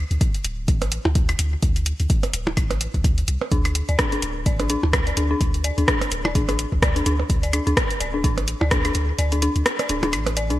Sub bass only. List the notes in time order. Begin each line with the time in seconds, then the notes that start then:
0.11 D2
0.45 D1
0.68 A1
1.05 D2
1.39 D2
1.63 D2
2.00 D2
2.34 D1
2.57 A1
2.94 D2
3.28 C2
3.52 D2
3.89 D2
4.23 D1
4.46 A1
4.83 D2
5.17 D2
5.41 D2
5.78 D2
6.12 D1
6.35 A1
6.72 D2
7.06 D2
7.30 D2
7.67 D2
8.01 D1
8.24 A1
8.61 D2
8.95 D2
9.19 D2
9.56 D2
9.89 D1
10.13 A1
10.50 C2